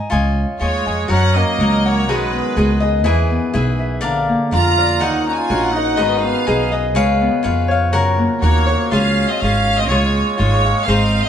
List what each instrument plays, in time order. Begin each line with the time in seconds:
Already playing: cavaquinho D#5 G#5 A#5
0.10 upright bass C#2, cavaquinho F4 C#5 D#5 G#5
0.59 upright bass D#2, trumpet G#3, cavaquinho F4 C#5 D#5 G#5, violin section C#5
0.86 upright bass F2, cavaquinho C#5 D#5 G#5
1.08 upright bass F#2, harp F#3, trumpet C#4, cavaquinho F#4 A#4 C#5 F#5, violin section F#5
1.35 trumpet A#3, harp C#4, violin section D#5
1.58 upright bass C#2, cavaquinho F#4 A#4 C#5 F#5, harp A#4
1.85 trumpet A#3, violin section C#5, harp F#5
2.08 upright bass B1, harp D#3, trumpet G#3, cavaquinho F#4 G#4 B4 D#5, violin section B4
2.33 harp B3
2.56 upright bass C#2, cavaquinho F#4 G#4 B4 D#5, harp G#4
2.80 cavaquinho G#4 B4 D#5, harp D#5
3.04 upright bass E2, harp E3, cavaquinho E4 G#4 B4 E5
3.31 harp B3
3.53 upright bass B1, cavaquinho E4 G#4 B4 E5, harp G#4
3.79 harp E5
4.01 upright bass A#1, harp D3, cavaquinho D4 A#4 D5 F5
4.29 harp A#3
4.51 upright bass F2, cavaquinho D4 A#4 D5 F5, harp F4, trumpet F4, violin section A#5
4.77 cavaquinho A#4 D5 F5, harp D5
5.00 upright bass D#2, harp D#3, cavaquinho D#4 A#4 C#5 F#5, trumpet D#4, violin section F#5
5.28 harp C#4, trumpet F#4, violin section A#5
5.33 violin section G#5
5.38 trumpet F4
5.50 upright bass A#1, cavaquinho D#4 A#4 C#5 F#5, harp F#4
5.63 violin section F#5
5.72 trumpet D#4, harp D#5, cavaquinho F#5
5.76 cavaquinho A#4 C#5
5.96 upright bass G#1, harp D#3, cavaquinho D#4 G#4 B4 D#5, violin section D#5
6.03 trumpet B3
6.14 violin section F#5
6.18 trumpet D#4, violin section F5
6.24 harp B3, trumpet B3
6.46 upright bass B1, cavaquinho D#4 G#4 B4 D#5, harp G#4
6.71 cavaquinho G#4 B4 D#5, harp D#5
6.95 upright bass C#2, harp C#3, cavaquinho G#4 B4 C#5 F5
7.21 harp B3
7.43 upright bass F2, harp F4, cavaquinho G#4 B4 C#5 F5
7.68 cavaquinho B4 F5, harp C#5
7.72 cavaquinho C#5
7.92 upright bass F#2, harp C#3, cavaquinho F#4 A#4 C#5 F#5
8.18 harp A#3
8.40 upright bass D#2, trumpet A#3, harp F#4, cavaquinho F#4 A#4 C#5 F#5, violin section C#5
8.66 harp C#5, cavaquinho C#5 F#5
8.71 cavaquinho A#4
8.91 upright bass C#2, trumpet C#4, cavaquinho F4 G#4 C#5 F5, violin section F5
9.28 trumpet C4, violin section D#5
9.40 upright bass G#1, trumpet C#4, cavaquinho F4 G#4, violin section F5
9.44 cavaquinho C#5 F5
9.77 trumpet C4, violin section D#5
9.87 upright bass C#2, trumpet G#3, cavaquinho F4 G#4 C#5 F5, violin section C#5
10.37 upright bass G#1, trumpet G#3, cavaquinho F4 G#4 C#5 F5, violin section C#5
10.65 cavaquinho G#4 C#5 F5
10.84 upright bass G#1, trumpet C4, cavaquinho D#4 C5, violin section F5
10.88 cavaquinho G#4 D#5
11.22 trumpet C4, violin section D#5